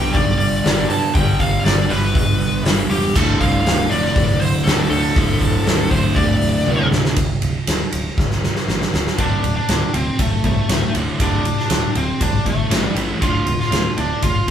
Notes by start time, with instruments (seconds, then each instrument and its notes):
Already playing: overdriven electric guitar G2 D3 G3, lead electric guitar G5
0.13 picked electric bass B1, lead electric guitar D5, kick, open hi-hat
0.38 picked electric bass G1, lead electric guitar D5, open hi-hat
0.63 picked electric bass G1, overdriven electric guitar G2 D3 G3, snare, open hi-hat
0.89 picked electric bass G2, lead electric guitar A5, open hi-hat
1.13 picked electric bass G1, overdriven electric guitar G2 D3 G3, lead electric guitar G5, kick, open hi-hat
1.40 lead electric guitar F5, kick, open hi-hat
1.64 picked electric bass G1, lead electric guitar D5, snare, open hi-hat
1.89 picked electric bass G1, overdriven electric guitar G2 D3 G3, lead electric guitar B4, open hi-hat
2.15 picked electric bass G1, kick, open hi-hat
2.40 picked electric bass G1, open hi-hat
2.64 picked electric bass G1, overdriven electric guitar G2 D3 G3, snare, open hi-hat
2.89 picked electric bass E1, lead electric guitar G4, open hi-hat
3.14 picked electric bass D1, overdriven electric guitar D2 A2 D3, lead electric guitar A4, kick, crash
3.40 picked electric bass C2, lead electric guitar F5, kick, open hi-hat
3.65 picked electric bass D1, snare, open hi-hat
3.89 picked electric bass F1, overdriven electric guitar D2 A2 D3, lead electric guitar D5, open hi-hat
4.16 picked electric bass F1, kick, open hi-hat
4.40 picked electric bass D1, lead electric guitar C5, open hi-hat
4.64 picked electric bass D1, overdriven electric guitar D2 A2, lead electric guitar A4, snare, open hi-hat
4.68 overdriven electric guitar D3
4.90 picked electric bass D2, lead electric guitar A4, open hi-hat
5.15 picked electric bass D1, overdriven electric guitar D2 A2 D3, kick, open hi-hat
5.41 kick, open hi-hat
5.66 picked electric bass D1, snare, open hi-hat
5.91 picked electric bass D1, overdriven electric guitar D2 A2 D3, lead electric guitar C5, kick, open hi-hat
6.15 picked electric bass D1, lead electric guitar D5, kick, open hi-hat
6.41 picked electric bass D1, open hi-hat
6.66 picked electric bass D1, overdriven electric guitar D2 A2 D3, high tom
6.79 mid tom
6.91 picked electric bass D1, snare
7.05 snare
7.16 picked electric bass D1, kick, ride
7.42 picked electric bass D1, ride
7.67 picked electric bass D1, snare, ride
7.92 picked electric bass D1, ride
8.18 picked electric bass D1, kick, snare
8.31 snare
8.44 snare
8.56 snare
8.68 picked electric bass A1, snare
8.81 snare
8.94 picked electric bass D1, snare
9.07 snare
9.18 picked electric bass D1, overdriven electric guitar D2 A2 D3, lead electric guitar D4, kick, ride
9.44 picked electric bass D1, overdriven electric guitar D2 A2, ride
9.56 lead electric guitar D4
9.69 picked electric bass D1, overdriven electric guitar D2 A2, snare, ride
9.93 picked electric bass D1, overdriven electric guitar D2 A2, lead electric guitar C4, ride
10.19 picked electric bass D1, overdriven electric guitar D2 A2, lead electric guitar A3, kick, ride
10.44 picked electric bass C2, overdriven electric guitar D2 A2, lead electric guitar A3, kick, ride
10.69 picked electric bass D1, overdriven electric guitar D2 A2, snare, ride
10.94 picked electric bass D1, overdriven electric guitar D2 A2 D3, ride
11.19 picked electric bass D1, overdriven electric guitar D2 A2 D3, lead electric guitar D4, kick, ride
11.45 overdriven electric guitar D2 A2, ride
11.59 lead electric guitar D4, snare
11.70 picked electric bass D1, overdriven electric guitar D2 A2, snare, ride
11.95 picked electric bass D1, overdriven electric guitar D2 A2, lead electric guitar C4, ride
12.21 picked electric bass C2, overdriven electric guitar D2 A2, lead electric guitar D4, kick, ride
12.46 picked electric bass G1, overdriven electric guitar D2 A2, lead electric guitar A3, kick, ride
12.70 picked electric bass A1, overdriven electric guitar A2 E3 A3, snare, ride
12.94 picked electric bass A1, overdriven electric guitar A2 E3 A3, ride
13.20 picked electric bass D1, overdriven electric guitar D2 A2 D3, lead electric guitar F4, kick, ride
13.46 picked electric bass D1, overdriven electric guitar D2 A2, ride
13.60 lead electric guitar F4, snare
13.71 picked electric bass D1, overdriven electric guitar D2 A2, snare, ride
13.97 picked electric bass D1, overdriven electric guitar D2 A2, lead electric guitar D4, ride
14.22 picked electric bass D1, overdriven electric guitar D2 A2, lead electric guitar F4, kick, ride